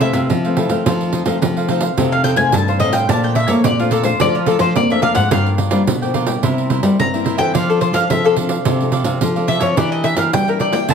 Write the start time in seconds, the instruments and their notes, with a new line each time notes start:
Already playing: nylon-string guitar F2
0.01 nylon-string guitar E3 A3 C4, cavaquinho E4 A4 C5 F5, mandolin E5, pandeiro
0.13 nylon-string guitar C3, cavaquinho A4 C5 F5, pandeiro
0.30 nylon-string guitar C3 F3, pandeiro
0.45 nylon-string guitar E3 A3 C4, cavaquinho A4 C5 F5, pandeiro
0.57 cavaquinho E4 A4 C5 F5, pandeiro
0.69 nylon-string guitar D#3 F3 A3 C4, cavaquinho A4 C5 F5, pandeiro
0.86 nylon-string guitar F2 F3, cavaquinho D#4 A4 C5 F5, pandeiro
1.01 pandeiro
1.12 cavaquinho D#4 A4 C5 F5, pandeiro
1.25 nylon-string guitar D#3 F3 A3 C4, cavaquinho D#4 A4 C5 F5, pandeiro
1.42 nylon-string guitar C3 F3, pandeiro
1.57 cavaquinho A4 C5 F5, pandeiro
1.68 nylon-string guitar D#3 A3 C4, cavaquinho D#4 A4 C5 F5, pandeiro
1.81 cavaquinho A4 C5 F5, pandeiro
1.98 nylon-string guitar F2 C3 D#3 A3 C4, cavaquinho D#4 A4 C5 F5, pandeiro
2.12 mandolin F5, pandeiro
2.24 cavaquinho D#4 A4 C5 F5, mandolin G5, pandeiro
2.36 nylon-string guitar C3 D#3 A3 C4, cavaquinho C5 F5, mandolin G#5, pandeiro
2.52 nylon-string guitar G2 C3, mandolin A5, pandeiro
2.68 cavaquinho A4 C5 F5, mandolin C5, pandeiro
2.80 nylon-string guitar A2 D#3 A3 C4, cavaquinho D#4 A4 C5 F5, mandolin D#5, pandeiro
2.93 cavaquinho A4 C5 F5, mandolin G5, pandeiro
3.09 nylon-string guitar A#2 F3 A3 D4, cavaquinho A#4 D5 F5 A5, mandolin A5, pandeiro
3.24 mandolin G5, pandeiro
3.35 cavaquinho A#4 D5 F5 A5, mandolin E5, pandeiro
3.48 nylon-string guitar F3 A3 A#3 D4, cavaquinho A#4 D5 F5 A5, mandolin C#5, pandeiro
3.64 nylon-string guitar F2 A#2, mandolin D5, pandeiro
3.79 nylon-string guitar F3 A3 D4, mandolin F4, cavaquinho D5 F5 A5, pandeiro
3.91 mandolin A4, cavaquinho A#4 D5 F5 A5, pandeiro
4.03 nylon-string guitar F3 A3 D4, mandolin C5, cavaquinho D5 F5 A5, pandeiro
4.20 nylon-string guitar A#2 F3 A3 D4, cavaquinho A#4 D5 F5 A5, mandolin D5, pandeiro
4.35 mandolin F4, pandeiro
4.46 nylon-string guitar F3 A3 D4, mandolin A4, cavaquinho A#4 D5 F5 A5, pandeiro
4.59 nylon-string guitar F3, mandolin C5, cavaquinho D5 F5 A5, pandeiro
4.76 nylon-string guitar F2 A#3, mandolin D5, pandeiro
4.90 nylon-string guitar F3 A3 D4, cavaquinho D5 F5 A5, mandolin E5, pandeiro
5.02 cavaquinho A#4 D5 F5 A5, mandolin F5, pandeiro
5.15 nylon-string guitar G#2, cavaquinho D5 F5, mandolin F#5, pandeiro
5.31 nylon-string guitar G2 F3 A#3 D4, cavaquinho F4 A#4 D5 G5, mandolin F5, pandeiro
5.46 pandeiro
5.58 cavaquinho F4 A#4 D5 G5, pandeiro
5.71 nylon-string guitar F3 G3 A#3 D4, cavaquinho F4 A#4 D5 G5, pandeiro
5.87 nylon-string guitar B2 D3, pandeiro
6.02 nylon-string guitar F3 A#3 D4, cavaquinho A#4 D5 G5, pandeiro
6.14 cavaquinho F4 A#4 D5 G5, pandeiro
6.27 nylon-string guitar G3 A#3 E4, cavaquinho A#4 D5 G5, pandeiro
6.43 nylon-string guitar C3, cavaquinho E4 A#4 C5 E5, pandeiro
6.58 pandeiro
6.70 nylon-string guitar G3 A#3 E4, cavaquinho E4 A#4 C5 E5, pandeiro
6.83 nylon-string guitar G3, cavaquinho A#4 C5 E5, pandeiro
6.99 nylon-string guitar G2 C4, mandolin A#5, pandeiro
7.13 nylon-string guitar G3 A#3 E4, cavaquinho A#4 C5 E5, pandeiro
7.24 cavaquinho E4 A#4 C5 E5, pandeiro
7.37 nylon-string guitar E3 C4 D4 A4, cavaquinho A#4 C5 E5, mandolin G5, pandeiro
7.54 nylon-string guitar F3, cavaquinho D4 A4 D5 F5, mandolin F5, pandeiro
7.70 mandolin A4, pandeiro
7.80 cavaquinho D4 A4 D5 F5, mandolin C5, pandeiro
7.93 nylon-string guitar F3, cavaquinho D4 A4 D5 F5, mandolin F5, pandeiro
8.10 nylon-string guitar C3 F3 C4 D4 A4, mandolin E5, pandeiro
8.24 mandolin A4, cavaquinho A4 D5 F5, pandeiro
8.36 nylon-string guitar C4 D4 A4, cavaquinho D4 A4 D5 F5, pandeiro
8.49 cavaquinho A4 D5 F5, pandeiro
8.65 nylon-string guitar C3 F3, cavaquinho D4 A4 D5 F5, pandeiro
8.81 nylon-string guitar C4 D4 A4, pandeiro
8.92 cavaquinho D4 A4 D5 F5, pandeiro
9.04 nylon-string guitar C3, cavaquinho A4 D5 F5, pandeiro
9.21 nylon-string guitar C3 F3 C4 D4 A4, pandeiro
9.36 nylon-string guitar C4 D4 A4, cavaquinho A4 D5 F5, pandeiro
9.47 cavaquinho D4 A4 D5 F5, mandolin E5, pandeiro
9.60 nylon-string guitar F3, cavaquinho A4 D5 F5, mandolin C#5, pandeiro
9.76 nylon-string guitar E3 A#3 D4 G4, cavaquinho D4 A#4 E5 G5, mandolin D5, pandeiro
9.92 mandolin D#5, pandeiro
10.03 cavaquinho D4 A#4 E5 G5, mandolin E5, pandeiro
10.16 nylon-string guitar E3 A#3 D4 G4, cavaquinho D4 A#4 E5 G5, mandolin F5, pandeiro
10.33 nylon-string guitar E3 G3, mandolin G5, pandeiro
10.47 nylon-string guitar A#3 D4 G4, cavaquinho A#4 E5 G5, mandolin A#4, pandeiro
10.59 cavaquinho D4 A#4 E5 G5, mandolin D5, pandeiro
10.73 nylon-string guitar A#3 E4 G4, cavaquinho A#4 E5 G5, mandolin G5, pandeiro
10.88 nylon-string guitar C3, cavaquinho E4 A#4 C5 E5, mandolin A5, pandeiro